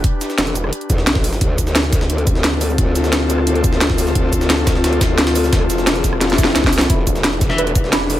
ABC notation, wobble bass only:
X:1
M:4/4
L:1/8
Q:1/4=175
K:Ddor
V:1 name="Wobble bass" clef=bass
z2 E,,,2 z E,, B,,,2 | D,,8 | D,,8 | D,,8 |
D,, E,,,4- E,,, C,,2 | E,,,8 |]